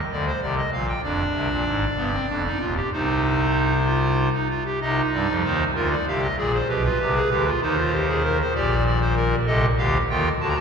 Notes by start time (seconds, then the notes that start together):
0.12 D2 D3 D5
0.27 C5
0.41 C2 C3 D5
0.57 D#5
0.73 A#1 A#2 F5
0.87 G5
1.03 F1 F2 D4 D5
1.34 C2 C3
1.49 A#1 A#2
1.66 G#1 G#2
1.96 G1 G2 B3
2.13 C4
2.28 F1 F2 D4
2.44 D#4
2.60 D#1 D#2 F4
2.76 G4
2.92 C2 C3 D#4 C5
3.86 F4
4.33 D#4
4.49 F4
4.65 G4
4.81 C2 C3 D#4 D#5
5.13 G2 G3 D5
5.28 F2 F3
5.44 D#2 D#3 C5
5.75 D2 D3 F4 A#4
5.91 D5
6.07 C2 C3 G4 F5
6.22 D#5
6.38 A#1 A#2 G#4 D5
6.54 C5
6.68 B1 B2 G4 B4
6.84 F4
6.99 C2 C3 G4
7.15 G#4
7.30 D2 D3 G4
7.46 F4
7.61 D#2 D#3 D#4 C5
7.78 F4
7.93 G4
8.08 G#4
8.24 A#4
8.40 C5
8.54 A#1 A#2 G4 D5
8.86 D5
9.01 C5
9.16 A#4
9.46 C2 C3 A4 D#5
9.77 D2 D3 G4 F5
10.09 D#2 D#3 F4 G5
10.40 D2 D3 F#4 A5
10.48 A#5
10.56 C2 C3 A5